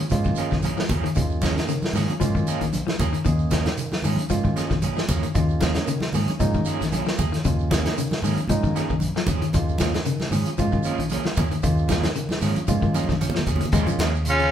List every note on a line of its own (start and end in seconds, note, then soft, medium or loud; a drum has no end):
0.00 closed hi-hat medium
0.10 0.31 G#2 medium
0.10 0.21 F3 medium
0.10 0.56 G#3 medium
0.10 0.56 A#3 medium
0.10 0.56 C#4 medium
0.10 0.56 F4 medium
0.10 kick medium
0.10 closed hi-hat medium
0.10 shekere medium
0.24 0.43 D#3 medium
0.24 kick medium
0.24 shekere soft
0.36 0.54 F3 medium
0.36 0.54 A#3 medium
0.36 0.55 C#4 medium
0.36 0.55 G#4 medium
0.36 closed hi-hat medium
0.36 shekere medium
0.50 0.72 A#1 medium
0.50 0.70 D#3 medium
0.50 kick medium
0.50 snare soft
0.50 shekere soft
0.62 0.80 F3 medium
0.62 0.81 A#3 medium
0.62 0.81 C#4 medium
0.62 0.81 G#4 medium
0.62 closed hi-hat medium
0.62 high conga medium
0.62 shekere medium
0.77 0.96 F3 medium
0.77 snare medium
0.77 shekere soft
0.89 1.01 D#2 medium
0.89 1.07 F3 medium
0.89 1.07 A#3 medium
0.89 1.07 C#4 medium
0.89 1.08 G#4 medium
0.89 kick medium
0.89 closed hi-hat soft
0.89 high conga medium
0.89 low conga medium
0.89 shekere medium
1.03 1.12 D#3 medium
1.03 closed hi-hat soft
1.03 shekere soft
1.15 1.57 D#2 loud
1.15 1.34 D#3 medium
1.15 1.55 G#3 medium
1.15 1.55 A#3 medium
1.15 1.56 C#4 medium
1.15 1.56 F4 medium
1.15 kick medium
1.15 closed hi-hat medium
1.15 high conga soft
1.15 low conga medium
1.15 shekere medium
1.30 shekere soft
1.42 1.56 F3 medium
1.42 1.61 F3 medium
1.42 1.57 A#3 medium
1.42 1.56 C#4 medium
1.42 1.55 G#4 medium
1.42 kick medium
1.42 snare medium
1.42 closed hi-hat soft
1.42 high conga medium
1.42 shekere medium
1.56 1.85 D#3 medium
1.56 1.72 A#3 soft
1.56 1.72 C#4 soft
1.56 1.72 G#4 medium
1.56 snare medium
1.56 closed hi-hat soft
1.56 shekere soft
1.68 1.87 C#3 medium
1.68 closed hi-hat medium
1.68 high conga soft
1.68 shekere medium
1.82 snare medium
1.82 high conga medium
1.82 shekere soft
1.93 2.04 G#2 medium
1.93 2.13 D#3 medium
1.93 2.12 F3 medium
1.93 2.12 A#3 medium
1.93 2.12 C#4 medium
1.93 2.12 G#4 medium
1.93 snare soft
1.93 open hi-hat medium
1.93 low conga medium
1.93 shekere medium
2.08 2.14 C#4 medium
2.08 2.15 F4 medium
2.08 closed hi-hat soft
2.08 high conga medium
2.08 shekere soft
2.20 2.41 G#2 medium
2.20 2.30 F3 medium
2.20 2.65 G#3 medium
2.20 2.65 A#3 medium
2.20 2.65 C#4 medium
2.20 2.65 F4 loud
2.20 kick medium
2.20 closed hi-hat medium
2.20 high conga soft
2.20 low conga medium
2.20 shekere medium
2.35 2.53 D#3 medium
2.35 kick medium
2.35 shekere soft
2.47 2.64 F3 medium
2.47 2.64 A#3 medium
2.47 2.64 C#4 medium
2.47 2.64 G#4 medium
2.47 closed hi-hat soft
2.47 shekere medium
2.61 2.81 A#1 medium
2.61 2.79 D#3 medium
2.61 closed hi-hat soft
2.61 shekere soft
2.73 closed hi-hat medium
2.73 high conga medium
2.73 shekere medium
2.87 3.05 F3 medium
2.87 snare medium
2.87 high conga medium
2.87 shekere soft
2.99 3.10 D#2 medium
2.99 3.16 F3 medium
2.99 3.16 A#3 medium
2.99 3.16 C#4 medium
2.99 3.17 G#4 medium
2.99 kick medium
2.99 closed hi-hat soft
2.99 high conga medium
2.99 low conga medium
2.99 shekere medium
3.13 3.21 D#3 medium
3.13 closed hi-hat soft
3.13 shekere soft
3.25 3.67 D#2 medium
3.25 3.43 D#3 medium
3.25 3.65 G#3 medium
3.25 3.65 A#3 medium
3.25 3.65 C#4 medium
3.25 3.65 G#4 medium
3.25 kick medium
3.25 closed hi-hat medium
3.25 high conga soft
3.25 low conga medium
3.25 shekere medium
3.39 shekere soft
3.51 3.68 F3 medium
3.51 3.70 F3 medium
3.51 3.69 A#3 medium
3.51 3.69 C#4 medium
3.51 3.69 G#4 medium
3.51 kick medium
3.51 snare medium
3.51 closed hi-hat soft
3.51 high conga medium
3.51 shekere medium
3.66 3.95 D#3 medium
3.66 snare medium
3.66 closed hi-hat soft
3.66 shekere soft
3.77 closed hi-hat medium
3.77 high conga soft
3.77 shekere medium
3.92 snare medium
3.92 high conga medium
3.92 shekere soft
4.02 4.15 G#2 medium
4.02 4.22 D#3 medium
4.02 4.21 F3 medium
4.02 4.21 A#3 medium
4.02 4.21 C#4 medium
4.02 4.21 G#4 medium
4.02 open hi-hat medium
4.02 low conga medium
4.02 shekere medium
4.16 4.23 C#4 medium
4.16 4.24 D#4 medium
4.16 closed hi-hat medium
4.16 high conga medium
4.16 shekere soft
4.29 4.50 G#2 medium
4.29 4.40 F3 medium
4.29 4.75 G#3 medium
4.29 4.75 A#3 medium
4.29 4.75 C#4 medium
4.29 4.75 F4 medium
4.29 kick medium
4.29 closed hi-hat medium
4.29 high conga soft
4.29 shekere medium
4.44 4.62 D#3 medium
4.44 kick medium
4.44 shekere soft
4.56 4.73 F3 medium
4.56 4.73 A#3 medium
4.56 4.73 C#4 medium
4.56 4.74 G#4 medium
4.56 snare soft
4.56 closed hi-hat soft
4.56 shekere medium
4.70 4.91 A#1 medium
4.70 4.89 D#3 medium
4.70 kick medium
4.70 snare soft
4.70 shekere soft
4.82 4.99 F3 medium
4.82 5.00 A#3 medium
4.82 5.00 C#4 medium
4.82 5.00 G#4 medium
4.82 closed hi-hat medium
4.82 high conga medium
4.82 shekere medium
4.96 5.15 F3 medium
4.96 snare medium
4.96 shekere soft
5.08 5.19 D#2 medium
5.08 5.26 F3 medium
5.08 5.26 A#3 medium
5.08 5.26 C#4 medium
5.08 5.26 G#4 medium
5.08 kick medium
5.08 closed hi-hat soft
5.08 high conga medium
5.08 low conga medium
5.08 shekere medium
5.23 5.31 D#3 medium
5.23 closed hi-hat soft
5.23 shekere soft
5.34 5.77 D#2 medium
5.34 5.54 D#3 medium
5.34 5.74 G#3 medium
5.34 5.74 A#3 medium
5.34 5.74 C#4 medium
5.34 5.74 F4 medium
5.34 kick medium
5.34 closed hi-hat medium
5.34 shekere medium
5.49 shekere soft
5.61 5.80 F3 medium
5.61 5.76 F3 medium
5.61 5.75 A#3 medium
5.61 5.75 C#4 medium
5.61 5.74 G#4 medium
5.61 kick medium
5.61 snare medium
5.61 closed hi-hat soft
5.61 high conga medium
5.61 shekere medium
5.74 6.05 D#3 medium
5.74 5.91 A#3 soft
5.74 5.91 C#4 soft
5.74 5.90 G#4 soft
5.74 snare medium
5.74 closed hi-hat soft
5.74 shekere soft
5.87 6.06 C#3 medium
5.87 closed hi-hat medium
5.87 high conga soft
5.87 shekere medium
6.00 snare medium
6.00 high conga medium
6.00 shekere soft
6.13 6.25 G#2 medium
6.13 6.33 D#3 medium
6.13 6.30 F3 medium
6.13 6.31 A#3 medium
6.13 6.31 C#4 medium
6.13 6.31 G#4 medium
6.13 open hi-hat medium
6.13 low conga medium
6.13 shekere medium
6.28 6.33 C#4 medium
6.28 6.33 D#4 medium
6.28 closed hi-hat soft
6.28 high conga medium
6.28 shekere soft
6.39 6.60 G#2 medium
6.39 6.50 F3 medium
6.39 6.84 G#3 medium
6.39 6.84 A#3 medium
6.39 6.84 C#4 medium
6.39 6.85 D#4 medium
6.39 kick medium
6.39 closed hi-hat medium
6.39 high conga soft
6.39 low conga medium
6.39 shekere medium
6.54 6.73 D#3 medium
6.54 kick medium
6.54 shekere soft
6.65 6.83 F3 medium
6.65 6.83 A#3 soft
6.65 6.83 C#4 medium
6.65 6.83 G#4 medium
6.65 closed hi-hat soft
6.65 shekere medium
6.80 7.01 A#1 medium
6.80 6.99 D#3 medium
6.80 snare soft
6.80 closed hi-hat soft
6.80 shekere soft
6.92 7.09 F3 medium
6.92 7.09 A#3 medium
6.92 7.09 C#4 medium
6.92 7.09 G#4 medium
6.92 closed hi-hat medium
6.92 high conga medium
6.92 shekere medium
7.05 7.25 F3 medium
7.05 snare medium
7.05 shekere soft
7.18 7.29 D#2 medium
7.18 7.35 A#3 medium
7.18 7.35 G#4 medium
7.18 muted clean electric guitar stroke medium
7.18 kick medium
7.18 closed hi-hat soft
7.18 high conga medium
7.18 low conga medium
7.18 shekere medium
7.32 7.41 D#3 medium
7.32 snare soft
7.32 closed hi-hat soft
7.32 shekere soft
7.44 7.85 D#2 loud
7.44 7.63 C#3 medium
7.44 7.84 G#3 medium
7.44 7.84 A#3 medium
7.44 7.84 C#4 medium
7.44 7.84 F4 medium
7.44 kick medium
7.44 closed hi-hat medium
7.44 high conga soft
7.44 low conga medium
7.44 shekere medium
7.59 shekere soft
7.71 7.85 F3 medium
7.71 7.89 F3 medium
7.71 7.84 A#3 medium
7.71 7.84 C#4 medium
7.71 7.83 G#4 medium
7.71 kick medium
7.71 snare medium
7.71 closed hi-hat soft
7.71 high conga medium
7.71 shekere medium
7.84 8.13 D#3 medium
7.84 8.00 A#3 soft
7.84 8.00 C#4 soft
7.84 7.99 G#4 soft
7.84 snare medium
7.84 closed hi-hat soft
7.84 shekere soft
7.97 8.16 C#3 medium
7.97 closed hi-hat medium
7.97 high conga soft
7.97 shekere medium
8.11 snare medium
8.11 high conga medium
8.11 shekere soft
8.22 8.33 G#2 medium
8.22 8.42 D#3 medium
8.22 8.40 F3 medium
8.22 8.40 A#3 medium
8.22 8.40 C#4 medium
8.22 8.40 G#4 medium
8.22 open hi-hat medium
8.22 low conga medium
8.22 shekere medium
8.36 8.42 C#4 medium
8.36 8.43 D#4 medium
8.36 closed hi-hat medium
8.36 high conga medium
8.36 shekere soft
8.48 8.69 G#2 medium
8.48 8.59 F3 medium
8.48 8.94 G#3 medium
8.48 8.94 A#3 medium
8.48 8.94 C#4 medium
8.48 8.94 D#4 loud
8.48 kick medium
8.48 closed hi-hat medium
8.48 high conga soft
8.48 low conga medium
8.48 shekere medium
8.63 8.82 D#3 medium
8.63 kick medium
8.63 shekere soft
8.75 8.92 F3 medium
8.75 8.92 A#3 medium
8.75 8.93 C#4 medium
8.75 8.93 G#4 medium
8.75 snare soft
8.75 closed hi-hat medium
8.75 shekere medium
8.89 9.10 A#1 medium
8.89 9.08 D#3 medium
8.89 kick medium
8.89 shekere soft
9.00 closed hi-hat medium
9.00 high conga medium
9.00 shekere medium
9.16 9.34 F3 medium
9.16 snare medium
9.16 shekere soft
9.27 9.39 D#2 medium
9.27 9.44 F3 medium
9.27 9.45 C#4 medium
9.27 9.45 G#4 medium
9.27 kick medium
9.27 closed hi-hat soft
9.27 high conga medium
9.27 low conga medium
9.27 shekere medium
9.42 9.51 D#3 medium
9.42 closed hi-hat medium
9.42 shekere soft
9.53 9.95 D#2 loud
9.53 9.73 D#3 medium
9.53 9.94 G#3 medium
9.53 9.94 A#3 medium
9.53 9.94 C#4 medium
9.53 9.94 F4 medium
9.53 kick medium
9.53 closed hi-hat medium
9.53 high conga soft
9.53 low conga medium
9.53 shekere medium
9.69 shekere soft
9.78 9.97 F3 medium
9.78 9.99 F3 medium
9.78 9.97 A#3 medium
9.78 9.97 C#4 medium
9.78 9.97 G#4 medium
9.78 kick medium
9.78 snare medium
9.78 closed hi-hat soft
9.78 high conga medium
9.78 shekere medium
9.93 10.23 D#3 medium
9.93 snare medium
9.93 closed hi-hat soft
9.93 shekere soft
10.05 10.25 C#3 medium
10.05 closed hi-hat medium
10.05 high conga soft
10.05 shekere medium
10.20 snare medium
10.20 high conga medium
10.20 shekere soft
10.31 10.42 G#2 medium
10.31 10.51 D#3 medium
10.31 10.49 F3 medium
10.31 10.49 C#4 medium
10.31 10.50 G#4 medium
10.31 muted clean electric guitar stroke medium
10.31 open hi-hat medium
10.31 low conga medium
10.31 shekere medium
10.45 10.52 C#4 medium
10.45 10.52 F4 medium
10.45 closed hi-hat soft
10.45 shekere soft
10.58 10.79 G#2 medium
10.58 10.68 F3 medium
10.58 11.03 G#3 medium
10.58 11.04 A#3 medium
10.58 11.04 C#4 medium
10.58 11.04 F4 loud
10.58 kick medium
10.58 closed hi-hat medium
10.58 high conga soft
10.58 shekere medium
10.72 10.91 D#3 medium
10.72 kick medium
10.72 shekere soft
10.83 11.02 F3 medium
10.83 11.02 A#3 medium
10.83 11.02 C#4 medium
10.83 11.02 G#4 medium
10.83 closed hi-hat soft
10.83 shekere medium
10.97 11.19 A#1 medium
10.97 11.18 D#3 medium
10.97 closed hi-hat soft
10.97 shekere soft
11.09 11.28 F3 medium
11.09 11.28 A#3 medium
11.09 11.28 C#4 medium
11.09 11.28 G#4 medium
11.09 closed hi-hat medium
11.09 high conga medium
11.09 shekere medium
11.23 11.43 F3 medium
11.23 snare medium
11.23 high conga medium
11.23 shekere soft
11.36 11.48 D#2 medium
11.36 11.54 F3 medium
11.36 11.54 A#3 medium
11.36 11.54 C#4 medium
11.36 11.54 G#4 medium
11.36 kick medium
11.36 closed hi-hat soft
11.36 high conga medium
11.36 low conga medium
11.36 shekere medium
11.51 11.60 D#3 medium
11.51 closed hi-hat soft
11.51 shekere soft
11.63 12.04 D#2 medium
11.63 11.82 D#3 medium
11.63 12.03 G#3 medium
11.63 12.03 A#3 medium
11.63 12.03 C#4 medium
11.63 12.03 F4 medium
11.63 kick medium
11.63 closed hi-hat medium
11.63 shekere medium
11.77 shekere soft
11.89 12.08 F3 medium
11.89 12.07 F3 medium
11.89 12.07 A#3 medium
11.89 12.07 C#4 medium
11.89 12.07 G#4 medium
11.89 kick medium
11.89 snare medium
11.89 closed hi-hat soft
11.89 high conga medium
11.89 shekere medium
12.03 12.33 D#3 medium
12.03 snare medium
12.03 closed hi-hat soft
12.03 shekere soft
12.15 12.34 C#3 medium
12.15 closed hi-hat medium
12.15 shekere medium
12.29 snare medium
12.29 high conga medium
12.29 shekere soft
12.41 12.53 G#2 medium
12.41 12.61 D#3 medium
12.41 12.59 F3 medium
12.41 12.59 A#3 medium
12.41 12.59 C#4 medium
12.41 12.60 G#4 medium
12.41 open hi-hat medium
12.41 low conga medium
12.41 shekere medium
12.56 12.62 C#4 medium
12.56 12.62 F4 medium
12.56 closed hi-hat soft
12.56 high conga medium
12.56 shekere soft
12.68 12.88 G#2 medium
12.68 12.78 F3 medium
12.68 13.13 G#3 medium
12.68 13.14 A#3 medium
12.68 13.13 C#4 medium
12.68 13.13 F4 medium
12.68 kick medium
12.68 closed hi-hat medium
12.68 high conga soft
12.68 low conga medium
12.68 shekere medium
12.82 13.01 D#3 medium
12.82 kick medium
12.82 shekere soft
12.94 13.12 F3 medium
12.94 13.12 A#3 medium
12.94 13.12 C#4 medium
12.94 13.12 G#4 medium
12.94 closed hi-hat soft
12.94 high conga medium
12.94 shekere medium
13.03 high conga medium
13.08 13.29 A#1 medium
13.08 13.28 D#3 medium
13.08 kick medium
13.08 snare soft
13.08 high conga medium
13.08 shekere soft
13.21 13.38 F3 medium
13.21 13.38 C#4 medium
13.21 muted clean electric guitar stroke medium
13.21 closed hi-hat medium
13.21 high conga medium
13.21 shekere medium
13.30 low conga medium
13.35 13.53 F3 medium
13.35 snare medium
13.35 shekere soft
13.39 low conga medium
13.46 13.58 D#2 medium
13.46 13.64 F3 medium
13.46 13.64 C#4 medium
13.46 13.65 G#4 medium
13.46 kick medium
13.46 closed hi-hat soft
13.46 low conga medium
13.46 shekere medium
13.56 low conga medium
13.61 13.70 D#3 medium
13.61 closed hi-hat medium
13.61 shekere soft
13.65 low conga medium
13.72 13.84 D#2 loud
13.72 13.90 F3 medium
13.72 13.83 G#3 medium
13.72 14.07 G#3 medium
13.72 14.07 A#3 medium
13.72 13.90 A#3 medium
13.72 14.07 C#4 medium
13.72 13.90 C#4 loud
13.72 14.07 F4 medium
13.72 13.90 G#4 medium
13.72 kick medium
13.72 closed hi-hat medium
13.72 shekere medium
13.86 14.06 F3 medium
13.86 closed hi-hat soft
13.86 high conga medium
13.86 shekere medium
13.98 14.49 D#2 medium
13.98 14.16 F3 medium
13.98 14.17 A#3 medium
13.98 14.17 C#4 medium
13.98 14.17 G#4 medium
13.98 snare medium
13.98 closed hi-hat medium
13.98 high conga medium
14.15 shekere soft
14.25 14.51 C#3 medium
14.25 14.51 F4 medium
14.25 closed hi-hat medium
14.25 shekere medium
14.30 14.51 C#4 medium
14.39 14.48 C#3 medium
14.39 closed hi-hat soft